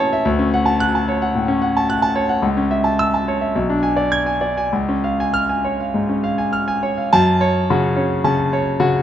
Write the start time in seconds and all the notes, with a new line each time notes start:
Already playing: A2 E3 C#4 E5 A5 E6
0.00 C#5
0.13 E5
0.25 D2
0.39 C#4
0.54 F#5
0.66 A5
0.80 F#6
0.95 A5
1.09 C#5
1.22 F#5
1.35 A2
1.48 C#4
1.62 F#5
1.77 A5
1.90 F#6
2.02 A5
2.16 C#5
2.29 F#5
2.42 C#2
2.57 C#4
2.71 E5
2.84 A5
2.99 E6
3.14 A5
3.28 C#5
3.41 E5
3.55 B1
3.69 D4
3.83 G#5
3.96 D5
4.12 G#6
4.26 G#5
4.41 D5
4.57 G#5
4.73 C#2
4.89 C#4
5.04 F5
5.20 G#5
5.34 F6
5.49 G#5
5.65 C#5
5.80 F5
5.94 G#2
6.09 C#4
6.24 F5
6.38 G#5
6.53 F6
6.68 G#5
6.83 C#5
6.98 F5
7.13 F#2 A5
7.41 C#5
7.70 C#3 F#4
7.96 C#4 C#5
8.24 C#3 A5
8.53 C#5
8.80 C#3 F#4